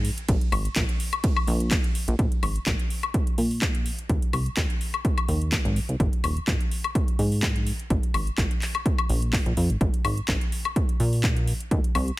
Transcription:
Already playing: G#2
0.05 open hi-hat
0.18 closed hi-hat
0.28 A#1, kick, closed hi-hat, ride
0.41 closed hi-hat
0.52 G#1, open hi-hat, high woodblock
0.65 closed hi-hat
0.76 A#1, kick, clap, closed hi-hat, ride
0.89 closed hi-hat
1.00 open hi-hat
1.13 closed hi-hat, high woodblock
1.24 kick, closed hi-hat, ride
1.37 high woodblock
1.47 A#1, open hi-hat
1.60 closed hi-hat
1.71 kick, clap, closed hi-hat, ride
1.84 closed hi-hat
1.95 open hi-hat
2.08 A#1, closed hi-hat
2.19 A#1, kick, closed hi-hat
2.32 closed hi-hat
2.43 G#1, open hi-hat, high woodblock
2.56 closed hi-hat
2.66 A#1, kick, clap, closed hi-hat
2.79 closed hi-hat
2.90 open hi-hat
3.03 closed hi-hat, high woodblock
3.14 kick, closed hi-hat
3.27 closed hi-hat
3.38 A#2, open hi-hat
3.51 open hi-hat
3.62 kick, clap, closed hi-hat
3.75 closed hi-hat
3.86 open hi-hat
3.99 closed hi-hat
4.09 D#2, kick, closed hi-hat
4.22 closed hi-hat
4.33 C2, open hi-hat, high woodblock
4.46 closed hi-hat
4.57 D#2, kick, clap, closed hi-hat
4.70 closed hi-hat
4.81 open hi-hat
4.94 closed hi-hat, high woodblock
5.05 kick, closed hi-hat
5.18 closed hi-hat, high woodblock
5.29 D#2, open hi-hat
5.42 closed hi-hat
5.52 kick, clap, closed hi-hat
5.65 G#1, closed hi-hat
5.76 open hi-hat
5.89 C2, closed hi-hat
6.00 G#1, kick, closed hi-hat
6.13 closed hi-hat
6.24 D#1, open hi-hat, high woodblock
6.37 closed hi-hat
6.47 G#1, kick, clap, closed hi-hat
6.61 closed hi-hat
6.71 open hi-hat
6.84 closed hi-hat, high woodblock
6.95 kick, closed hi-hat
7.08 closed hi-hat
7.19 G#2, open hi-hat
7.32 open hi-hat
7.43 kick, clap, closed hi-hat
7.56 closed hi-hat
7.67 open hi-hat
7.79 closed hi-hat
7.90 A#1, kick, closed hi-hat
8.03 closed hi-hat
8.14 G#1, open hi-hat, high woodblock
8.27 closed hi-hat
8.38 A#1, kick, clap, closed hi-hat
8.51 closed hi-hat
8.62 clap, open hi-hat
8.75 closed hi-hat, high woodblock
8.86 kick, closed hi-hat
8.98 closed hi-hat, high woodblock
9.09 A#1, open hi-hat
9.22 closed hi-hat
9.33 kick, clap, open hi-hat
9.46 A#1, closed hi-hat
9.57 F2, open hi-hat
9.70 G#1, closed hi-hat
9.81 A#1, kick, closed hi-hat
9.94 closed hi-hat
10.05 G#1, open hi-hat, high woodblock
10.18 closed hi-hat
10.28 A#1, kick, clap, closed hi-hat
10.41 closed hi-hat
10.52 open hi-hat
10.65 closed hi-hat, high woodblock
10.76 kick, closed hi-hat
10.89 closed hi-hat
11.00 A#2, open hi-hat
11.13 open hi-hat
11.24 kick, clap, closed hi-hat
11.37 closed hi-hat
11.47 open hi-hat
11.60 closed hi-hat
11.71 D#2, kick, closed hi-hat
11.84 closed hi-hat
11.95 C2, open hi-hat, high woodblock
12.08 closed hi-hat

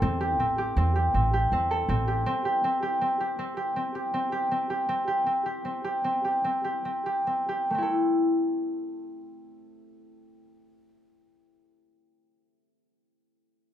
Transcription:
Already playing: G4 A4
0.02 E2 C4
0.21 G4
0.39 A1 C4
0.58 G4
0.77 E2 C4
0.96 G4
1.14 A1 C4
1.34 G4
1.52 E2 C4
1.71 A4
1.89 A1 C4
2.08 G4
2.26 C4
2.45 G4
2.64 C4
2.83 G4
3.01 C4
3.20 G4
3.39 C4
3.57 G4
3.76 C4
3.95 G4
4.14 C4
4.32 G4
4.51 C4
4.70 G4
4.89 C4
5.08 G4
5.26 C4
5.46 G4
5.65 C4
5.84 G4
6.04 C4
6.25 G4
6.44 C4
6.64 G4
6.85 C4
7.06 G4
7.27 C4
7.49 G4
7.70 A3
7.74 C4 E4
7.83 A4

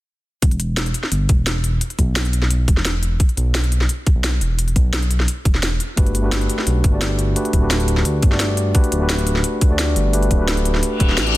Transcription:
0.42 E1, kick, closed hi-hat
0.51 closed hi-hat
0.60 closed hi-hat
0.77 snare, closed hi-hat
0.86 closed hi-hat
0.94 closed hi-hat
1.03 snare
1.12 G1, closed hi-hat
1.29 E1, kick, closed hi-hat
1.47 snare, closed hi-hat
1.64 closed hi-hat
1.81 closed hi-hat
1.90 closed hi-hat
1.99 B1, kick, closed hi-hat
2.16 snare, closed hi-hat
2.25 closed hi-hat
2.33 closed hi-hat
2.42 snare
2.51 B1, closed hi-hat
2.68 E1, kick, closed hi-hat
2.77 snare
2.85 snare, closed hi-hat
3.03 closed hi-hat
3.20 kick, closed hi-hat
3.29 closed hi-hat
3.37 B1, closed hi-hat
3.55 snare, closed hi-hat
3.64 closed hi-hat
3.72 closed hi-hat
3.81 snare
3.89 closed hi-hat
4.07 kick, closed hi-hat
4.16 B1
4.24 snare, closed hi-hat
4.41 E1, closed hi-hat
4.59 closed hi-hat
4.68 closed hi-hat
4.76 B1, kick, closed hi-hat
4.93 snare, closed hi-hat
5.02 closed hi-hat
5.11 closed hi-hat
5.20 snare
5.28 closed hi-hat
5.45 E1, kick, closed hi-hat
5.54 snare
5.63 snare, closed hi-hat
5.80 closed hi-hat
5.96 G1 A3 D4 F#4 G4 B4, kick, closed hi-hat
6.07 closed hi-hat
6.15 closed hi-hat
6.22 A3 D4 F#4 G4 B4
6.32 snare, closed hi-hat
6.41 closed hi-hat
6.50 closed hi-hat
6.58 snare
6.67 B1, closed hi-hat
6.84 G1, kick, closed hi-hat
6.91 A3 D4 F#4 G4 D5
7.01 snare, closed hi-hat
7.19 closed hi-hat
7.35 A3 D4 F#4 G4 B4, closed hi-hat
7.45 closed hi-hat
7.53 D1, kick, closed hi-hat
7.60 A3 D4 F#4 G4
7.64 B4
7.71 snare, closed hi-hat
7.80 closed hi-hat
7.88 closed hi-hat
7.97 snare
8.05 D2, closed hi-hat
8.22 G1, kick, closed hi-hat
8.30 A3 D4 F#4 G4, snare
8.34 D5
8.40 snare, closed hi-hat
8.57 closed hi-hat
8.74 A3 D4 F#4 G4 B4, kick, closed hi-hat
8.84 closed hi-hat
8.92 D1, closed hi-hat
8.99 A3 D4 F#4 G4 B4
9.09 snare, closed hi-hat
9.18 closed hi-hat
9.27 closed hi-hat
9.36 snare
9.44 closed hi-hat
9.61 kick, closed hi-hat
9.69 D2 A3 D4 F#4 G4 D5
9.79 snare, closed hi-hat
9.96 G1, closed hi-hat
10.12 A3 D4 F#4 G4 B4, closed hi-hat
10.23 closed hi-hat
10.31 D1, kick, closed hi-hat
10.38 A3 D4 F#4 G4 B4
10.48 snare, closed hi-hat
10.57 closed hi-hat
10.65 closed hi-hat
10.74 snare
10.83 closed hi-hat, reverse cymbal
10.99 D1 A3 D4 F#4 G4 B4, kick, closed hi-hat
11.09 snare
11.17 A1, snare, closed hi-hat
11.26 A3 C4 E4 G4 D5, closed hi-hat

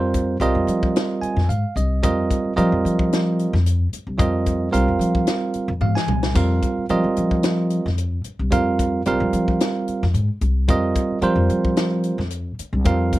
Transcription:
Already playing: F2 G3 C4 F4 A#4 C5
0.14 kick, closed hi-hat
0.40 C2 G3 C4 F4 A#4 D#5, closed hi-hat
0.55 F2
0.67 F3, closed hi-hat
0.83 kick
0.96 snare, closed hi-hat
1.22 G#5, muted upright bass stroke, closed hi-hat
1.36 F2, snare
1.49 G#2 F5, closed hi-hat
1.76 C2 D#5, closed hi-hat
2.03 F2 G3 C4 F4 A#4 D#5, kick, closed hi-hat
2.31 kick, closed hi-hat
2.44 muted upright bass stroke
2.56 F3 G3 C4 F4 A#4 D#5, closed hi-hat
2.72 F2
2.85 F3, closed hi-hat
2.99 kick
3.13 snare, closed hi-hat
3.39 closed hi-hat
3.53 F2, snare
3.66 closed hi-hat
3.93 muted upright bass stroke, closed hi-hat
4.07 C2
4.18 F2 G3 C4 F4 A#4 D#5, kick, closed hi-hat
4.46 kick, closed hi-hat
4.71 C2 G3 C4 F4 A#4 F5, closed hi-hat
4.88 F2
4.99 F3, closed hi-hat
5.15 kick
5.27 snare, closed hi-hat
5.54 muted upright bass stroke, closed hi-hat
5.68 F2
5.81 G#2 F5, high tom
5.95 G#5, snare
6.08 C2, mid tom
6.23 snare
6.35 F2 G3 C4 F4 A#4 F5, kick, closed hi-hat, splash
6.63 kick, closed hi-hat
6.78 muted upright bass stroke
6.89 F3 G3 C4 F4 A#4 D#5, closed hi-hat
7.04 F2
7.16 F3, closed hi-hat
7.31 kick
7.43 snare, closed hi-hat
7.70 closed hi-hat
7.86 F2, snare
7.98 closed hi-hat
8.24 muted upright bass stroke, closed hi-hat
8.39 C2
8.50 F2 G3 C4 F4 A#4 F5, kick, closed hi-hat
8.79 kick, closed hi-hat
9.06 C2 G3 C4 F4 A#4 F5, closed hi-hat
9.20 F2
9.33 F3, closed hi-hat
9.48 kick
9.60 snare, closed hi-hat
9.88 muted upright bass stroke, closed hi-hat
10.03 F2, snare
10.14 G#2, closed hi-hat
10.41 C2, closed hi-hat
10.68 F2 G3 C4 F4 A#4 D#5, kick, closed hi-hat
10.95 kick, closed hi-hat
11.10 muted upright bass stroke
11.21 F3 G3 C4 F4 A#4 C5, closed hi-hat
11.36 F2
11.49 F3, closed hi-hat
11.65 kick
11.77 snare, closed hi-hat
12.04 closed hi-hat
12.18 F2, snare
12.31 closed hi-hat
12.59 muted upright bass stroke, closed hi-hat
12.73 C2
12.85 F2 G3 C4 F4 A#4 F5, kick, closed hi-hat
13.13 kick, closed hi-hat

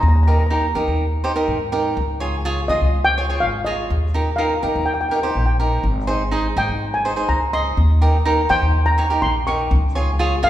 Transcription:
0.01 D#2 A#5
0.08 A#5
0.16 A#5
0.23 A#5
0.27 D#4 G4 A#4 A#5
0.39 A#5
0.46 A#5
0.50 D#4 G4 A#4 A#5
0.60 A#5
0.75 D#3 D#4 G4 A#4
0.88 D#2
1.24 D#4 G4 C5
1.36 D#4 G4 A#4
1.48 G#2
1.72 D#4 G4 A#4
1.97 C#2
2.20 F4 G#4 C#5
2.45 F4 G#4 C#5
2.68 C#3 F4 G#4 D#5
2.81 C#2
3.05 G5
3.18 F4 G#4 C#5
3.30 F4 G#4 C#5
3.40 G#1 F5
3.65 F4 G#4 C#5 D#5
3.90 D#2
4.14 D#4 G4 A#4
4.36 D#4 G4 A#4 F5
4.63 D#3 D#4 G4 A#4
4.76 D#2
4.85 G5
4.94 G5
5.01 G5
5.09 D#4 G4 A#4 G5
5.16 G5
5.23 D#4 G4 C5 G5
5.31 G5
5.35 A#1 G5
5.46 G5
5.60 D#4 G4 A#4
5.83 G#1
6.07 D#4 G#4 C5
6.31 D#4 G#4 C5
6.56 G#2 D#4 G#4 C5 G5
6.68 G#1
6.94 G#5
7.05 D#4 G#4 C5
7.16 D#4 G#4 C5
7.28 C#2 A#5
7.53 D#4 G#4 D#5 C6
7.77 D#2
8.02 D#4 G4 A#4
8.25 D#4 G4 A#4
8.49 D#3 D#4 G4 C5 G5
8.62 D#2
8.86 A#5
8.98 D#4 G4 C#5
9.10 D#4 G4 A#4
9.22 A#1 C6
9.47 D#4 G4 A#4 C#6
9.71 C#2
9.95 F4 G#4 C#5
10.19 F4 G#4 C#5
10.43 C#3 F4 G#4 C#5 F5

